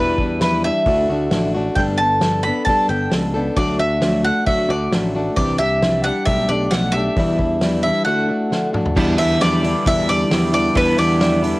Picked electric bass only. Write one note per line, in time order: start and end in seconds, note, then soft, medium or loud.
0.00 0.69 E2 medium
0.86 1.04 D2 medium
1.09 1.27 D2 medium
1.32 1.68 A1 medium
1.76 2.50 G1 medium
2.89 3.07 G1 medium
3.12 3.49 C#2 medium
3.57 4.30 D2 medium
4.69 4.87 D2 medium
4.92 5.28 A1 medium
5.37 6.10 C2 medium
6.27 6.45 B1 medium
6.49 6.67 B1 medium
6.71 7.08 B1 medium
7.17 7.90 E2 medium
8.96 9.15 E2 medium
9.20 9.74 E2 medium
9.87 10.23 E2 medium
10.33 10.69 E2 loud
10.76 10.94 E2 medium
10.99 11.54 E2 medium